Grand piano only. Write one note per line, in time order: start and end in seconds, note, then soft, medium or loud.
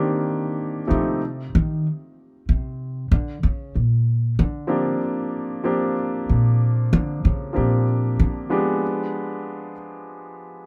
0.00 0.81 D#3 medium
0.00 0.82 A#3 soft
0.00 0.82 C4 soft
0.00 0.82 D4 soft
0.00 0.82 G4 medium
0.87 1.17 F3 medium
0.87 1.16 A3 soft
0.87 1.17 C4 soft
0.87 1.17 D#4 soft
0.87 1.17 G4 medium
4.67 4.97 F3 medium
4.67 4.97 A#3 soft
4.67 4.97 C4 medium
4.67 4.97 D4 medium
4.67 4.98 G4 medium
5.64 5.92 F3 medium
5.64 5.93 A#3 medium
5.64 5.93 C4 medium
5.64 5.93 D4 medium
5.64 5.93 G4 medium
7.53 7.82 F3 medium
7.53 7.83 A#3 soft
7.53 7.83 C4 soft
7.53 7.83 D4 soft
7.53 7.84 G4 medium
8.50 9.71 F3 medium
8.50 9.72 G#3 medium
8.50 9.72 B3 medium
8.50 9.72 D4 medium
8.50 9.73 G4 medium